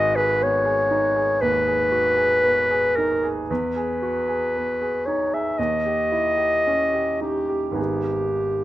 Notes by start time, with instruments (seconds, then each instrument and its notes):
Already playing: grand piano G#1 F#4 G#4, clarinet D#5
0.15 grand piano G#4, clarinet B4
0.41 grand piano B3, clarinet C#5
0.65 grand piano G#4
0.91 grand piano D#4
1.16 grand piano G#4
1.41 grand piano D#2, clarinet B4
1.67 grand piano G#4
1.92 grand piano F#4
2.17 grand piano G#4
2.43 grand piano B3
2.71 grand piano G#4
2.96 grand piano D#4, clarinet A#4
3.23 grand piano G#4
3.50 grand piano E2, clarinet B4
3.76 grand piano G#4
4.02 grand piano F#4
4.28 grand piano G#4
4.56 grand piano B3
4.81 grand piano G#4
5.06 grand piano D#4, clarinet C#5
5.33 grand piano G#4, clarinet E5
5.58 grand piano D#2, clarinet D#5
5.86 grand piano G4
6.12 grand piano E4
6.37 grand piano G4
6.67 grand piano C#4
6.93 grand piano G4
7.21 grand piano D#4, clarinet G4
7.49 grand piano G4
7.72 grand piano G#1 B3 D#4 G#4
7.80 clarinet G4